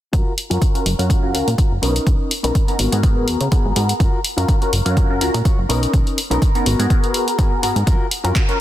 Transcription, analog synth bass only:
0.13 F#2
0.51 F#2
0.86 F#1
0.99 F#2
1.34 C#2
1.47 A#2
1.71 F#1
1.82 B1
2.07 B1
2.44 B1
2.79 G#1
2.92 G#2
3.28 D#2
3.41 C#3
3.65 G#1
3.76 G#2
4.00 F#2
4.37 F#2
4.73 F#1
4.86 F#2
5.21 C#2
5.34 A#2
5.58 F#1
5.69 B1
5.94 B1
6.31 B1
6.66 G#1
6.79 G#2
7.63 G#2
7.76 G#2
7.87 F#2
8.24 F#2

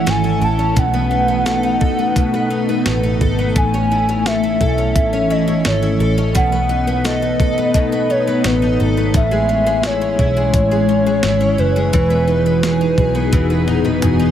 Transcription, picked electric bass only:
0.07 G#1
0.42 A1
0.77 B1
1.81 F#1
2.86 A1
3.21 G#1
3.56 A1
4.61 B1
4.96 A1
5.66 G#1
6.00 A1
6.35 B1
7.40 F#1
7.74 B1
8.45 A1
8.80 G#1
9.14 A1
10.19 B1
10.53 A1
11.24 G#1
11.59 F#1
11.94 E1
12.98 B1
13.33 E1
14.03 E1

